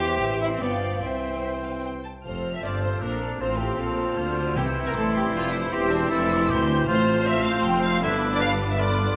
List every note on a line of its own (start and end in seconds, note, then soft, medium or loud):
0.00 0.20 E2 medium
0.00 0.62 E3 medium
0.00 0.40 G4 medium
0.00 0.20 C5 medium
0.00 0.59 C5 medium
0.00 0.63 C5 medium
0.00 0.20 E5 medium
0.00 0.61 E5 medium
0.00 0.20 G5 medium
0.22 0.61 A1 medium
0.22 0.61 C5 medium
0.22 0.60 E5 soft
0.22 0.61 E5 medium
0.42 0.51 E4 medium
0.53 0.62 C4 medium
0.60 1.02 G1 medium
0.60 1.03 F3 soft
0.60 0.91 B3 medium
0.60 1.01 D5 medium
0.60 1.01 D5 soft
0.60 1.01 D5 medium
0.60 1.01 F5 medium
0.60 1.02 F5 soft
0.60 1.00 G5 medium
0.92 1.02 B3 medium
1.01 2.04 C2 soft
1.01 2.04 E3 soft
1.01 1.82 C4 soft
1.01 2.02 C5 soft
1.01 2.05 C5 soft
1.01 1.38 E5 soft
1.01 2.05 E5 soft
1.01 2.02 G5 soft
1.43 1.51 E5 soft
1.63 1.71 F5 soft
1.84 1.92 G5 soft
2.05 2.13 A5 soft
2.24 2.61 F1 soft
2.24 2.61 F2 soft
2.24 3.36 F3 soft
2.24 2.98 C4 soft
2.24 4.53 C4 medium
2.24 2.61 A4 soft
2.24 3.37 A4 medium
2.24 2.52 C5 medium
2.24 2.98 A5 soft
2.24 2.61 F6 soft
2.54 2.63 E5 medium
2.63 3.01 G1 soft
2.63 3.01 G2 medium
2.63 3.03 F4 soft
2.63 3.02 C5 soft
2.63 2.83 D5 medium
2.63 3.02 E6 soft
2.83 3.02 C5 medium
3.02 3.40 A#1 soft
3.02 3.40 A#2 medium
3.02 3.43 D4 soft
3.02 3.41 D4 medium
3.02 3.40 A4 medium
3.02 3.21 A#4 medium
3.02 3.41 A#5 soft
3.02 3.39 F6 soft
3.21 3.29 A4 medium
3.40 3.78 A1 medium
3.40 3.79 A2 medium
3.40 3.78 F3 soft
3.40 4.18 C4 medium
3.40 4.20 C4 medium
3.40 4.53 F4 medium
3.40 4.17 A4 soft
3.40 3.60 C5 medium
3.40 3.78 C6 medium
3.40 3.77 F6 soft
3.60 3.79 G4 medium
3.78 4.17 A#1 soft
3.78 4.17 A#2 medium
3.78 4.59 F3 medium
3.78 4.38 A4 medium
3.78 4.56 C6 medium
3.78 4.55 F6 medium
4.18 4.56 D2 medium
4.18 4.56 D3 medium
4.18 4.26 A#3 medium
4.18 4.55 F4 medium
4.18 4.57 C5 medium
4.37 4.56 A3 medium
4.56 4.95 C2 medium
4.56 5.11 C3 medium
4.56 4.95 C3 medium
4.56 5.72 E3 medium
4.56 6.84 C4 medium
4.56 5.35 C4 medium
4.56 5.70 E4 medium
4.56 6.84 E4 medium
4.56 4.65 G4 medium
4.56 4.95 C5 medium
4.56 5.41 C6 medium
4.56 4.96 E6 medium
4.88 4.91 A#4 medium
4.95 5.33 A1 medium
4.95 5.34 A2 medium
4.95 5.15 A4 medium
4.95 5.34 D5 medium
4.95 5.73 C6 medium
5.17 5.24 G4 medium
5.33 5.72 F1 medium
5.33 5.72 F2 medium
5.33 5.72 D4 medium
5.33 5.54 F4 medium
5.33 5.72 C5 medium
5.55 5.73 E4 medium
5.72 6.10 E1 medium
5.72 6.10 E2 medium
5.72 6.10 E3 medium
5.72 6.10 C4 medium
5.72 5.92 G4 medium
5.72 6.10 C5 medium
5.72 6.10 C6 medium
5.72 6.48 E6 medium
5.92 6.11 D4 medium
6.11 6.49 F1 medium
6.11 6.49 F2 medium
6.11 6.90 E3 medium
6.11 6.30 C4 medium
6.11 6.69 E4 medium
6.11 6.51 A4 medium
6.11 6.50 D5 medium
6.11 6.87 C6 medium
6.31 6.39 D4 medium
6.50 6.88 D2 medium
6.50 6.88 C4 medium
6.50 6.87 G4 medium
6.50 6.88 C5 medium
6.50 6.88 G6 medium
6.87 7.60 A1 medium
6.87 7.60 A2 medium
6.87 8.02 F3 medium
6.87 7.99 A3 medium
6.87 7.98 C4 medium
6.87 7.98 F4 medium
6.87 7.25 F4 medium
6.87 7.24 C5 loud
6.87 7.99 C5 medium
6.87 8.00 C6 medium
6.87 7.99 F6 medium
7.26 8.01 C4 medium
7.26 7.45 E5 loud
7.45 7.64 F5 medium
7.64 8.01 F1 medium
7.64 8.02 F2 medium
7.64 7.83 G5 loud
7.84 8.02 F5 loud
8.01 9.16 G1 medium
8.01 9.16 G2 medium
8.01 8.51 D3 medium
8.01 9.16 B3 medium
8.01 9.15 D4 medium
8.01 8.77 D4 medium
8.01 8.41 E4 medium
8.01 8.78 B4 medium
8.01 8.12 E5 loud
8.01 8.77 B5 medium
8.01 8.77 D6 medium
8.33 8.41 D5 loud
8.40 8.79 D4 medium
8.40 8.50 F5 loud
8.71 8.79 E5 medium
8.78 9.16 D3 medium
8.78 9.14 D4 medium
8.78 9.16 F4 medium
8.78 9.15 B4 medium
8.78 9.16 D5 loud
8.78 8.97 B5 medium
8.78 9.16 D6 medium
8.98 9.16 C6 medium